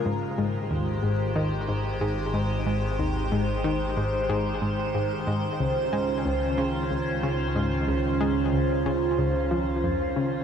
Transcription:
<<
  \new Staff \with { instrumentName = "Ambient pad" } { \time 4/4 \key aes \major \tempo 4 = 92 << { <ees c''>1~ | <ees c''>1~ | <ees c''>1~ | <ees c''>1 | } \\ { <aes g'>1~ | <aes g'>1 | <des' f'>1~ | <des' f'>1 | } >> }
  \new Staff \with { instrumentName = "Synth arpeggio sound" } { \clef bass \time 4/4 \key aes \major aes,16 r16 aes,16 r16 ees,16 r16 aes,16 r16 ees16 r16 aes,8 aes,16 r16 aes,16 r16 | aes,16 r16 ees,16 r16 aes,16 r16 ees16 r16 aes,8 aes,16 r16 aes,16 r16 aes,16 r16 | aes,16 r16 des,16 r16 aes16 r16 des,8 des16 r16 des,16 r16 des16 r16 aes,16 r16 | des,16 r16 aes16 r16 des,8 des16 r16 des,16 r16 f16 r16 f,8 des16 r16 | }
  \new Staff \with { instrumentName = "Analog synth bass" } { \clef bass \time 4/4 \key aes \major aes,,1~ | aes,,1 | des,1~ | des,1 | }
>>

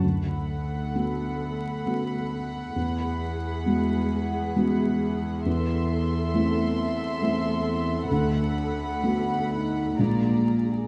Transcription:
<<
  \new Staff \with { instrumentName = "Violin section" } { \time 3/4 \key d \lydian \tempo 4 = 66 b''2.~ | b''2. | c'''2. | b''2 bes''4 | }
  \new Staff \with { instrumentName = "Violin section" } { \time 3/4 \key d \lydian fis''2.~ | fis''2. | e''2. | fis''2 d''4 | }
  \new Staff \with { instrumentName = "Viola section" } { \time 3/4 \key d \lydian a'2. | gis'2. | a'2.~ | a'2 aes'4 | }
  \new Staff \with { instrumentName = "French horn section" } { \time 3/4 \key d \lydian r2. | r2. | r2. | r4. ees'8 f'8. aes'16 | }
  \new Staff \with { instrumentName = "Felt piano" } { \time 3/4 \key d \lydian d,4 <a b fis'>4 <a b fis'>4 | e,4 <gis b fis'>4 <gis b fis'>4 | e,4 <a c' e'>4 <a c' e'>4 | d,4 <a b fis'>4 <bes,, aes bes d'>4 | }
  \new Staff \with { instrumentName = "Cello section" } { \clef bass \time 3/4 \key d \lydian d,2. | e,2.~ | e,2. | d,2 bes,4 | }
>>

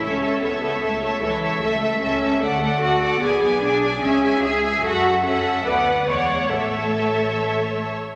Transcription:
<<
  \new Staff \with { instrumentName = "Violin section" } { \time 4/4 \key a \major \tempo 4 = 148 e''8 e''8 e''8 e''8 e''8 e''8 e''8 e''8 | e''8 e''8 e''8 e''8 fis''8 fis''8 fis''8 fis''8 | gis''8 gis''8 gis''8 gis''8 gis''8 gis''8 gis''8 gis''8 | fis''4 fis''4 fis''4 fis''4 |
e''2.~ e''8 r8 | }
  \new Staff \with { instrumentName = "Violin section" } { \time 4/4 \key a \major cis''8 cis''8 cis''8 cis''8 cis''8 cis''8 cis''8 cis''8 | e''8 e''8 e''8 e''8 d''8 d''8 d''8 d''8 | d''8 d''8 d''8 d''8 e''8 e''8 e''8 e''8 | e''4 e''4 d''4 d''4 |
cis''2.~ cis''8 r8 | }
  \new Staff \with { instrumentName = "Viola section" } { \time 4/4 \key a \major a'8 a'8 a'8 a'8 a'8 a'8 a'8 a'8 | a'8 a'8 a'8 a'8 a'8 a'8 a'8 a'8 | gis'8 gis'8 gis'8 gis'8 gis'8 gis'8 gis'8 gis'8 | a'4 a'4 b'4 cis''4 |
a'2.~ a'8 r8 | }
  \new Staff \with { instrumentName = "Cello section" } { \time 4/4 \key a \major cis'4 b4 a4 e4 | a4 cis'4 a4 fis'4 | b4 d'4 cis'4 gis'4 | fis'4 cis'4 b4 gis4 |
a2. r4 | }
  \new Staff \with { instrumentName = "Double bass section" } { \clef bass \time 4/4 \key a \major cis,4 cis,4 cis,4 cis,4 | cis,4 cis,4 d,4 d,4 | b,,4 b,,4 cis,4 cis,4 | fis,2 d,4 e,4 |
a,,2.~ a,,8 r8 | }
>>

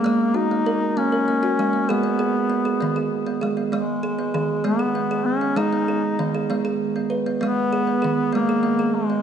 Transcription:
<<
  \new Staff \with { instrumentName = "Duduk" } { \time 6/8 \key gis \minor \tempo 4. = 65 ais8 dis'4 cis'4. | b2 r4 | gis4. b4 cis'8 | dis'4 r2 |
b4. ais4 gis8 | }
  \new Staff \with { instrumentName = "Kalimba" } { \time 6/8 \key gis \minor << { ais8 fis'16 ais16 ais'8 ais16 ais'16 ais16 fis'8 ais16 | gis'16 b16 gis'8 b16 gis'16 b16 gis'8 b16 gis'16 b16 | b8 gis'16 b16 gis'8 b16 gis'16 b16 gis'8 b16 | gis'16 b16 gis'8 b16 gis'16 b16 gis'8 b16 b'16 b16 |
b8 gis'16 b16 gis'8 b16 gis'16 b16 gis'8 b16 | } \\ { gis4. r4 gis8 | gis4. dis4 gis8 | gis4 dis16 r16 gis4. | gis4 dis16 r16 gis4. |
gis4 dis16 r16 gis4. | } >> }
>>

